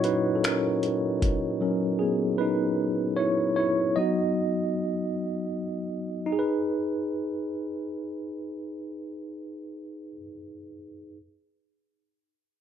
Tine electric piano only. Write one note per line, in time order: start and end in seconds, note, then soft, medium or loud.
0.00 0.40 A#2 soft
0.00 0.40 F#3 medium
0.00 0.40 C#4 medium
0.00 3.19 E4 medium
0.00 3.98 F#4 medium
0.00 3.17 C#5 medium
0.00 3.96 D#5 medium
0.04 0.35 D#4 medium
0.04 0.34 B4 medium
0.35 0.43 A4 soft
0.44 1.28 C#4 soft
0.44 1.28 A#4 medium
1.61 2.74 F#3 soft
1.61 2.75 C#4 medium
1.61 2.75 A#4 soft
1.99 2.37 B3 soft
1.99 2.40 G#4 medium
2.38 3.14 D#4 medium
2.38 3.20 B4 medium
3.17 3.55 E4 medium
3.17 3.55 C#5 medium
3.56 3.94 E4 medium
3.56 3.97 C#5 medium
3.96 6.28 F#3 soft
3.96 6.28 B3 soft
3.96 6.25 D#4 soft
3.96 5.50 F#4 medium
3.96 5.49 D#5 medium
6.26 10.10 D#4 medium
6.32 10.13 G#4 medium
6.39 10.16 B4 medium